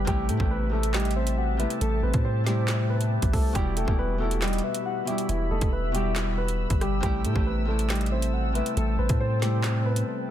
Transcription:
Already playing: B2 E3 G4 E5
0.05 A1 C3 G3 A3 G4 G5 A5, kick, closed hi-hat
0.10 E4
0.29 A2 A3 A4 G5, closed hi-hat
0.37 A1 C3 G3 A3, kick
0.42 E4
0.51 B3 B4
0.69 C3 G3 A3 A4
0.75 E4
0.83 closed hi-hat
0.94 G3 G4 D#5, snare, clap, closed hi-hat
1.00 closed hi-hat
1.05 closed hi-hat
1.11 closed hi-hat
1.16 C4 C5 E5
1.27 closed hi-hat
1.38 F#5
1.57 C3 G3 A3 B3 B4 E5, closed hi-hat
1.62 E4
1.70 closed hi-hat
1.81 A1 A3 A4, closed hi-hat
2.03 A1 B3 B4 C5
2.14 A2, kick, closed hi-hat
2.25 C4 C5
2.44 C3 G3 A3 G4, snare, closed hi-hat
2.49 E4
2.68 snare, clap, closed hi-hat
2.90 B3 B4
3.01 closed hi-hat
3.22 A1, kick, closed hi-hat
3.33 C2 A3 A4, kick, open hi-hat
3.53 E1 B2 E3 G3 G4 B5 E6, kick, closed hi-hat
3.58 E4
3.77 A3 A4 G5, closed hi-hat
3.85 E1 B2 E3 G3, kick
3.90 E4
3.99 B3 B4
4.18 B2 E3 G3 A3 A4
4.23 E4
4.31 closed hi-hat
4.42 G3 G4 D#5, snare, clap, closed hi-hat
4.48 closed hi-hat
4.53 closed hi-hat
4.58 closed hi-hat
4.64 B3 B4 E5
4.74 closed hi-hat
4.86 F#5
5.05 B2 E3 G3 G4 E5, closed hi-hat
5.10 E4
5.18 closed hi-hat
5.29 E1 E3 E4, closed hi-hat
5.51 E1 A3 A4 D#5
5.61 E1, kick, closed hi-hat
5.72 B3 B4 E5
5.92 B2 E3 G3 G4, closed hi-hat
5.97 G4
6.16 snare, clap, closed hi-hat
6.38 B3 B4
6.48 closed hi-hat
6.70 G1, kick, closed hi-hat
6.81 G3 G4, cross-stick, closed hi-hat
7.00 A1 C3 G3 A3 G4 A4 G5 A5, kick, closed hi-hat
7.06 E4
7.25 A2 A3 A4 G5, closed hi-hat
7.33 A1 C3 G3 A3, kick
7.38 E4
7.46 B3 B4
7.65 C3 G3 A3 A4
7.70 E4
7.79 closed hi-hat
7.90 G3 G4 D#5, snare, clap, closed hi-hat
7.95 closed hi-hat
8.01 closed hi-hat
8.06 closed hi-hat
8.12 C4 C5 E5
8.22 closed hi-hat
8.33 F#5
8.53 C3 G3 A3 B3 B4 E5, closed hi-hat
8.58 E4
8.66 closed hi-hat
8.77 A1 A3 A4, closed hi-hat
8.99 A1 B3 B4 C5
9.09 A2, kick, closed hi-hat
9.20 C4 C5
9.40 C3 G3 A3 G4, snare, closed hi-hat
9.45 E4
9.64 snare, clap, closed hi-hat
9.86 B3 B4
9.96 closed hi-hat

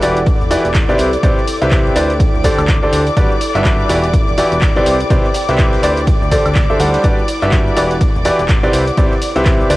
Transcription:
Already playing: E4 A4 D5 F#5 D6
0.01 E1 E3 E4 F#4 G4 B4 D5, open hi-hat, ride, cabasa
0.16 closed hi-hat, cabasa
0.26 kick, closed hi-hat, ride, cabasa
0.41 E1, ride, cabasa
0.51 E3 E4 F#4 G4 B4 D5, open hi-hat, ride, cabasa
0.65 E1, closed hi-hat, cabasa
0.74 kick, snare, clap, closed hi-hat, ride, cabasa
0.89 C3 E4 G4 B4 C5 D5, ride, cabasa
0.98 C2, open hi-hat, ride, cabasa
1.13 closed hi-hat, cabasa
1.23 C2 C3 E4 G4 B4 C5 D5, kick, closed hi-hat, ride, cabasa
1.38 snare, cabasa
1.47 open hi-hat, ride, cabasa
1.55 G5
1.61 C2 C3 E4 G4 B4 C5 E5, snare, closed hi-hat, cabasa
1.71 kick, snare, clap, closed hi-hat, ride, cabasa
1.86 cabasa
1.96 D2 E4 G4 B4 C5 D5, open hi-hat, ride, cabasa
2.10 closed hi-hat, ride, cabasa
2.20 kick, closed hi-hat, ride, cabasa
2.34 D2, cabasa
2.44 D3 D4 G4 A4 C5 D5, kick, open hi-hat, ride, cabasa
2.58 D2, closed hi-hat, cabasa, high woodblock
2.68 kick, snare, clap, closed hi-hat, ride, cabasa
2.83 D3 D4 G4 A4 C5 D5, cabasa
2.93 D2, open hi-hat, ride, cabasa
3.07 closed hi-hat, cabasa
3.17 G1 G3 D4 F#4 G4 B4 D5, kick, closed hi-hat, ride, cabasa
3.31 cabasa
3.41 open hi-hat, ride, cabasa
3.55 G1 G3 D4 F#4 G4 B4 E5, snare, clap, closed hi-hat, cabasa
3.65 kick, snare, clap, closed hi-hat, ride, cabasa
3.80 cabasa
3.89 E1 E3 E4 F#4 G4 B4 D5, open hi-hat, ride, cabasa
4.04 closed hi-hat, cabasa
4.14 kick, closed hi-hat, ride, cabasa
4.28 E1, ride, cabasa
4.34 G5
4.38 E3 E4 F#4 G4 B4 D5, open hi-hat, ride, cabasa
4.52 E1, closed hi-hat, cabasa
4.61 kick, snare, clap, closed hi-hat, ride, cabasa
4.76 C3 E4 G4 B4 C5 D5, ride, cabasa
4.86 C2, open hi-hat, ride, cabasa
5.00 closed hi-hat, cabasa
5.10 C2 C3 E4 G4 B4 C5 D5, kick, closed hi-hat, ride, cabasa
5.24 snare, cabasa
5.34 snare, open hi-hat, ride, cabasa
5.48 C2 C3 E4 G4 B4 C5 E5, snare, closed hi-hat, ride, cabasa
5.58 kick, snare, clap, closed hi-hat, ride, cabasa
5.73 snare, ride, cabasa
5.83 D2 E4 G4 B4 C5 D5, open hi-hat, ride, cabasa
5.96 closed hi-hat, ride, cabasa
6.07 kick, closed hi-hat, ride, cabasa
6.21 D2, cabasa
6.31 D3 D4 G4 A4 C5 D5, kick, open hi-hat, ride, cabasa
6.45 D2, closed hi-hat, cabasa, high woodblock
6.55 kick, snare, clap, closed hi-hat, ride, cabasa
6.70 D3 D4 G4 A4 C5 E5, cabasa
6.79 D2 G3 D4 G4 A4 C5 F#5, open hi-hat, ride, cabasa
6.94 snare, closed hi-hat, ride, cabasa
7.04 G1 G3 D4 F#4 G4 B4 D5, kick, closed hi-hat, ride, cabasa
7.19 cabasa
7.28 F#5, open hi-hat, ride, cabasa
7.42 G1 G3 D4 F#4 G4 B4 E5, snare, clap, closed hi-hat, cabasa
7.52 kick, snare, clap, closed hi-hat, ride, cabasa
7.67 cabasa
7.76 E1 E3 E4 F#4 G4 B4 D5, open hi-hat, ride, cabasa
7.91 closed hi-hat, cabasa
8.01 kick, closed hi-hat, ride, cabasa
8.15 E1, ride, cabasa
8.24 E3 E4 F#4 G4 B4 D5, open hi-hat, ride, cabasa
8.39 E1, closed hi-hat, cabasa
8.48 kick, snare, clap, closed hi-hat, ride, cabasa
8.63 C3 E4 G4 B4 C5 D5, ride, cabasa
8.73 C2, open hi-hat, ride, cabasa
8.87 closed hi-hat, cabasa
8.97 C2 C3 E4 G4 B4 C5 D5, kick, closed hi-hat, ride, cabasa
9.11 snare, cabasa
9.22 open hi-hat, ride, cabasa
9.36 C2 C3 E4 G4 B4 C5 E5, snare, closed hi-hat, cabasa
9.45 kick, snare, clap, closed hi-hat, ride, cabasa
9.61 cabasa
9.70 D2 E4 G4 B4 C5 D5, open hi-hat, ride, cabasa

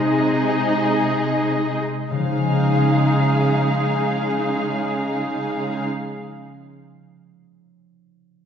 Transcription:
Already playing: C3 G#3 D#4 G#4 D#5
2.11 C#3 G#3 D#4 G#4 F5
2.18 F3
2.25 C#4
2.32 D#4
2.39 G#4
2.46 D#5

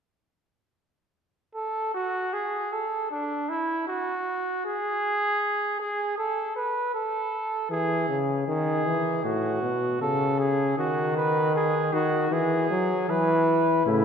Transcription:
1.55 A4
1.95 F#4
2.33 G#4
2.73 A4
3.11 D4
3.49 E4
3.88 F#4
4.66 G#4
5.80 G#4
6.18 A4
6.56 B4
6.94 A4
7.71 E3 G#4
8.09 C#3
8.48 D#3 G#4
8.86 E3
9.24 A2 F#4
9.63 B2
10.01 C#3 A4
10.40 G#4
10.78 D#3 F#4
11.17 B4
11.56 G#4
11.93 D#3 F#4
12.31 E3 G#4
12.71 F#3
13.09 E3 B4
13.86 A2 C#3 E4

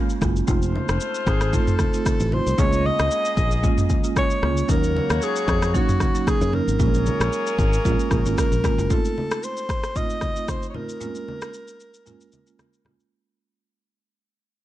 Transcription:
Already playing: G#3 A#3 C#4 F4 A#4 F5
0.10 shaker
0.21 F#1 G#3 A#3 C#4 F4, kick, cross-stick, shaker
0.36 shaker
0.47 F1 A3 C4 D#4 F4 C5, kick, low conga, shaker
0.62 shaker
0.76 high conga
0.89 F1, cross-stick, shaker
1.01 shaker
1.15 shaker
1.27 G#1 G#4, kick, cross-stick, shaker
1.41 cross-stick, shaker
1.53 A3 C4 D#4 F4 A4, kick, low conga, shaker
1.67 mid tom, shaker
1.79 kick, cross-stick, high conga, shaker
1.94 A3 C4 D#4 F4, shaker
2.06 kick, cross-stick, high conga, shaker
2.20 A1, shaker
2.32 A3 C4 D#4 F4 C5, high conga
2.47 C2, shaker
2.58 C#2 G#3 A#3 C#4 F4 G#4 C#5 D#5, kick, low conga, shaker
2.73 shaker
2.86 D#5, high conga
2.99 C#2, cross-stick, shaker
3.11 shaker
3.25 shaker
3.37 A#1, kick, shaker
3.51 shaker
3.63 G#3 A#3 C#4 F4, kick, low conga, shaker
3.78 mid tom, shaker
3.90 kick, high conga, shaker
4.04 G#3 A#3 C#4 F4, shaker
4.16 C#5, kick, cross-stick, high conga, shaker
4.31 shaker
4.42 C#2 G#3 A#3 C#4 F4, cross-stick, high conga
4.57 shaker
4.68 D#2 F#3 A#3 C#4 D#4 F#4 A#4 C#5, kick, low conga, shaker
4.84 shaker
4.97 high conga
5.10 D#2, cross-stick, shaker
5.22 G#4, shaker
5.36 shaker
5.48 F2, kick, cross-stick, shaker
5.62 cross-stick, shaker
5.74 F#3 A#3 C#4 D#4 F#4, kick, low conga, shaker
5.89 mid tom, shaker
6.00 kick, cross-stick, high conga, shaker
6.15 F#3 A#3 C#4 D#4, shaker
6.27 G#4, kick, cross-stick, high conga, shaker
6.41 F#2, shaker
6.53 F#3 A#3 C#4 D#4 A#4, high conga
6.68 G#1, shaker
6.79 A#1 G#3 A#3 C#4 F4 G#4 C#5, kick, low conga, shaker
6.94 shaker
7.06 high conga, shaker
7.20 A#1, cross-stick, shaker
7.33 shaker
7.47 shaker
7.59 G#1, kick, shaker
7.73 shaker
7.84 A#1 G#3 A#3 C#4 F4, kick, low conga, shaker
8.00 shaker
8.11 A#1, kick, cross-stick, high conga, shaker
8.26 G#1 G#3 A#3 C#4 F4, shaker
8.38 A#4, kick, cross-stick, high conga, shaker
8.52 A#1, shaker
8.64 G#3 A#3 C#4 F4, kick, cross-stick, high conga, low conga, shaker
8.78 F#1, shaker
8.90 A3 C4 D#4 F4 A4, kick, low conga, shaker
9.05 shaker
9.18 high conga
9.31 cross-stick, shaker
9.43 C5, shaker
9.57 shaker
9.69 kick, cross-stick, shaker
9.84 cross-stick, shaker
9.95 A3 C4 D#4 F4 D#5, kick, low conga, shaker
10.10 shaker
10.21 kick, cross-stick, high conga, shaker
10.36 A3 C4 D#4 F4, shaker
10.48 C5, kick, cross-stick, high conga, shaker
10.63 shaker
10.70 C#5
10.74 A3 C4 D#4 F4 A#4, high conga, low conga
10.89 shaker
11.00 G#3 A#3 C#4 F4, low conga, shaker
11.15 shaker
11.28 high conga
11.42 cross-stick, shaker
11.54 shaker
11.68 shaker
11.80 shaker
11.94 shaker
12.06 G#3 A#3 C#4 F4, low conga, shaker
12.21 shaker
12.32 high conga, shaker
12.47 G#3 A#3 C#4 F4, shaker
12.59 cross-stick, high conga, shaker
12.73 shaker
12.85 G#3 A#3 C#4 F4, cross-stick, high conga, low conga
13.00 shaker

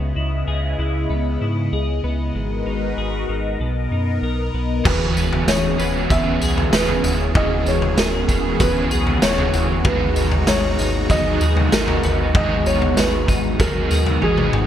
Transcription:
Already playing: C#2 C#3 G#3 B3 E4 G#4 D#5
0.16 C#2 E4
0.47 C#2 G#4
0.79 C#2 E4
1.10 C#2 B3
1.41 G#2 E4
1.72 C#2 G#4
2.04 C#2 B3
2.35 G#1 G#2 G#3 F#4 A#4 B4
2.66 G#1 D#4
2.98 G#1 G#4
3.29 G#1 D#4
3.60 B1 B2 B3 A#4
3.91 F#2 D#4
4.22 B1 A#4
4.54 B1 B3
4.84 E1 E3 G#3 B3 C#4 F#4 G#4 B4, kick, floor tom, crash
5.16 E1 B4, tambourine
5.33 floor tom
5.47 E1 G#4 C#5, snare, tambourine
5.78 E1 B3 G#4 B4, tambourine
5.82 C#4
6.09 E1 B3 C#4 G#4 B4 E5, kick, floor tom, tambourine
6.41 B1 G#4, tambourine
6.58 floor tom
6.72 E1 B3 C#4 G#4 B4, snare, tambourine
6.88 floor tom
7.04 E1 E4, floor tom, tambourine
7.35 E1 E3 G#3 B3 C#4 G#4 D#5, kick, floor tom
7.66 E1 C#5, tambourine
7.82 floor tom
7.97 E1 G#4 A#4, snare, tambourine
8.28 E1 B3 G#4, kick, tambourine
8.32 C#4
8.59 E1 B3 C#4 G#4 B4, kick, floor tom, tambourine
8.91 B1 G#4, tambourine
9.07 floor tom
9.22 E1 B3 C#4 G#4 B4 C#5, snare, tambourine
9.38 floor tom
9.54 E1 E4, floor tom, tambourine
9.84 G#1 G#2 F#3 G#3 B3 D#4 B4 A#5, kick, floor tom
9.88 D#4 G#4
10.16 G#1 D#4, tambourine
10.32 floor tom
10.47 G#1 G#4 C#5, snare, tambourine
10.79 G#1 D#4, tambourine
11.09 G#1 F#3 B3 D#4 D#5, kick, floor tom, tambourine
11.13 G#4
11.41 D#2 G#4, tambourine
11.57 floor tom
11.71 G#1 F#3 B3 D#4 A#4, snare, tambourine
11.75 G#4
11.88 floor tom
12.03 G#1 B3, floor tom, tambourine
12.33 G#1 G#2 F#3 G#3 B3 G#4 D#5, kick, floor tom
12.38 D#4 G#4
12.66 G#1 D#4 C#5, tambourine
12.82 floor tom
12.97 G#1 G#4 B4, snare, tambourine
13.28 G#1 D#4, kick, tambourine
13.59 G#1 F#3 B3 D#4 G#4 A#4, kick, floor tom, tambourine
13.91 D#2 G#4, tambourine
14.06 floor tom
14.21 G#1 F#3 B3 D#4 G#4, high tom
14.38 mid tom
14.53 G#1 B3, mid tom

